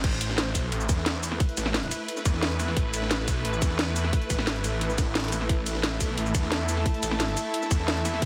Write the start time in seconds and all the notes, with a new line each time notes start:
0.04 A1 A3 E4 A4 B4, kick, closed hi-hat, crash
0.20 A1 E5, closed hi-hat, ride, shaker
0.29 snare
0.38 snare, closed hi-hat, shaker
0.55 B1, kick, closed hi-hat, ride, shaker
0.72 A1, closed hi-hat
0.81 shaker
0.89 E2, kick, snare, closed hi-hat, ride, shaker
0.98 snare
1.06 snare, closed hi-hat
1.23 closed hi-hat, open hi-hat, ride, shaker
1.32 snare
1.40 kick, closed hi-hat
1.49 closed hi-hat
1.57 A1, closed hi-hat, ride, shaker
1.66 snare
1.74 snare, closed hi-hat, shaker
1.83 closed hi-hat
1.91 closed hi-hat, ride, shaker
2.08 closed hi-hat
2.17 snare, shaker
2.25 E2, kick, closed hi-hat, ride, shaker
2.34 snare
2.43 snare, closed hi-hat, open hi-hat
2.51 closed hi-hat
2.60 snare, closed hi-hat, open hi-hat, ride, shaker
2.68 snare
2.77 A1, kick, closed hi-hat
2.94 A1, closed hi-hat, ride, shaker
3.02 snare
3.11 snare, closed hi-hat, shaker
3.28 B1, kick, closed hi-hat, ride, shaker
3.45 A1, closed hi-hat
3.53 shaker
3.62 E2, kick, snare, closed hi-hat, ride, shaker
3.70 snare
3.79 snare, closed hi-hat
3.96 closed hi-hat, open hi-hat, ride, shaker
4.04 snare
4.13 kick, closed hi-hat
4.22 closed hi-hat
4.30 A1, kick, closed hi-hat, ride, shaker
4.39 snare
4.47 snare, closed hi-hat, shaker
4.56 closed hi-hat
4.64 A1, closed hi-hat, ride, shaker
4.81 snare, closed hi-hat
4.90 snare, shaker
4.98 kick, snare, closed hi-hat, ride, shaker
5.15 snare, closed hi-hat
5.20 snare, closed hi-hat
5.24 snare, closed hi-hat
5.28 snare, closed hi-hat
5.32 snare, closed hi-hat, open hi-hat, ride, shaker
5.41 snare
5.49 A1 E5, kick, closed hi-hat
5.65 A1 A5, closed hi-hat, ride, shaker
5.75 snare
5.83 snare, closed hi-hat, shaker
6.00 B1, kick, closed hi-hat, ride, shaker
6.18 A1, closed hi-hat
6.26 shaker
6.35 E2, kick, snare, closed hi-hat, ride, shaker
6.43 snare
6.52 snare, closed hi-hat
6.69 closed hi-hat, open hi-hat, ride, shaker
6.77 snare
6.86 kick, closed hi-hat
6.94 closed hi-hat
7.03 A1, closed hi-hat, ride, shaker
7.11 snare
7.20 snare, closed hi-hat, shaker
7.28 closed hi-hat
7.37 closed hi-hat, ride, shaker
7.54 closed hi-hat
7.62 snare, shaker
7.71 E2, kick, closed hi-hat, ride, shaker
7.80 snare
7.88 snare, closed hi-hat, open hi-hat
7.97 closed hi-hat
8.05 snare, closed hi-hat, open hi-hat, ride, shaker
8.14 snare
8.22 A1, kick, closed hi-hat